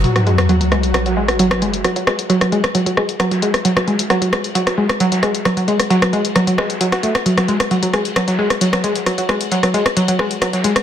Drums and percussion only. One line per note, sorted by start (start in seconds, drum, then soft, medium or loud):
0.04 closed hi-hat medium
0.15 cross-stick medium
0.15 snare medium
0.15 closed hi-hat medium
0.27 closed hi-hat soft
0.27 closed hi-hat medium
0.38 cross-stick medium
0.38 closed hi-hat medium
0.49 closed hi-hat medium
0.61 closed hi-hat medium
0.72 cross-stick medium
0.72 closed hi-hat soft
0.72 open hi-hat medium
0.83 closed hi-hat medium
0.94 cross-stick medium
0.94 closed hi-hat medium
1.06 snare medium
1.06 closed hi-hat medium
1.16 closed hi-hat medium
1.28 cross-stick medium
1.28 closed hi-hat medium
1.39 closed hi-hat medium
1.51 cross-stick medium
1.51 snare soft
1.51 closed hi-hat medium
1.62 closed hi-hat medium
1.74 closed hi-hat medium
1.84 cross-stick medium
1.84 closed hi-hat medium
1.96 closed hi-hat medium
2.07 cross-stick medium
2.07 closed hi-hat medium
2.07 closed hi-hat soft
2.19 closed hi-hat medium
2.19 closed hi-hat soft
2.30 closed hi-hat medium
2.41 cross-stick medium
2.41 closed hi-hat medium
2.52 closed hi-hat soft
2.52 closed hi-hat medium
2.64 cross-stick medium
2.64 closed hi-hat medium
2.75 closed hi-hat medium
2.86 closed hi-hat medium
2.97 cross-stick medium
2.97 closed hi-hat medium
3.09 closed hi-hat medium
3.19 cross-stick medium
3.19 closed hi-hat medium
3.31 snare medium
3.31 closed hi-hat medium
3.42 closed hi-hat medium
3.54 cross-stick medium
3.54 closed hi-hat medium
3.65 closed hi-hat medium
3.77 cross-stick medium
3.77 snare medium
3.77 closed hi-hat medium
3.88 closed hi-hat soft
3.88 closed hi-hat medium
3.99 closed hi-hat medium
4.10 cross-stick medium
4.10 closed hi-hat medium
4.22 closed hi-hat medium
4.32 cross-stick medium
4.32 closed hi-hat soft
4.32 open hi-hat medium
4.44 closed hi-hat medium
4.55 closed hi-hat medium
4.66 cross-stick medium
4.66 snare soft
4.66 closed hi-hat medium
4.77 closed hi-hat medium
4.89 cross-stick medium
4.89 closed hi-hat medium
5.00 closed hi-hat medium
5.12 snare soft
5.12 closed hi-hat medium
5.22 cross-stick medium
5.22 closed hi-hat medium
5.35 closed hi-hat medium
5.45 cross-stick medium
5.45 closed hi-hat medium
5.57 closed hi-hat soft
5.68 closed hi-hat soft
5.68 closed hi-hat medium
5.80 cross-stick medium
5.80 closed hi-hat medium
5.80 closed hi-hat soft
5.90 closed hi-hat soft
5.90 closed hi-hat medium
6.02 cross-stick medium
6.02 closed hi-hat medium
6.13 closed hi-hat soft
6.13 closed hi-hat medium
6.25 closed hi-hat soft
6.35 cross-stick medium
6.35 closed hi-hat medium
6.47 closed hi-hat soft
6.58 cross-stick medium
6.58 snare loud
6.58 closed hi-hat medium
6.70 snare soft
6.70 closed hi-hat soft
6.81 closed hi-hat medium
6.92 cross-stick medium
6.92 snare loud
6.92 closed hi-hat soft
6.92 closed hi-hat medium
7.03 snare soft
7.03 closed hi-hat medium
7.15 cross-stick medium
7.15 closed hi-hat medium
7.26 closed hi-hat medium
7.38 cross-stick medium
7.38 snare medium
7.38 closed hi-hat soft
7.48 closed hi-hat soft
7.48 closed hi-hat medium
7.60 cross-stick medium
7.60 closed hi-hat medium
7.71 closed hi-hat soft
7.71 closed hi-hat medium
7.83 closed hi-hat soft
7.93 cross-stick medium
7.93 closed hi-hat soft
7.93 open hi-hat medium
8.05 closed hi-hat soft
8.16 cross-stick loud
8.16 closed hi-hat medium
8.27 snare medium
8.27 closed hi-hat soft
8.39 closed hi-hat medium
8.50 cross-stick medium
8.50 closed hi-hat soft
8.61 closed hi-hat medium
8.73 cross-stick loud
8.73 snare soft
8.73 closed hi-hat medium
8.84 closed hi-hat medium
8.95 closed hi-hat soft
9.06 cross-stick medium
9.06 closed hi-hat medium
9.18 closed hi-hat soft
9.29 cross-stick medium
9.29 closed hi-hat soft
9.29 closed hi-hat medium
9.40 closed hi-hat soft
9.40 closed hi-hat medium
9.51 closed hi-hat medium
9.51 closed hi-hat soft
9.63 cross-stick medium
9.63 closed hi-hat soft
9.74 closed hi-hat soft
9.74 closed hi-hat medium
9.86 cross-stick medium
9.86 closed hi-hat soft
9.96 closed hi-hat medium
10.08 closed hi-hat soft
10.19 cross-stick medium
10.19 closed hi-hat medium
10.31 closed hi-hat soft
10.41 cross-stick medium
10.41 closed hi-hat medium
10.53 snare medium
10.53 closed hi-hat soft
10.64 closed hi-hat medium
10.76 cross-stick medium
10.76 closed hi-hat soft